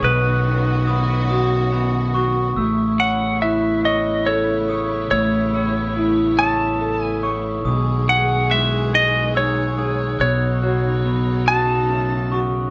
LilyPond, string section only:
\new Staff \with { instrumentName = "String section" } { \time 6/8 \key a \lydian \tempo 4. = 47 << { <dis fis'>2. | <cis a e'>2.~ | <cis a e'>2. | <dis gis gis'>2. |
<cis fis dis'>2. | } \\ { <b cis'>2. | b2.~ | b2.~ | b2.~ |
b2. | } >> }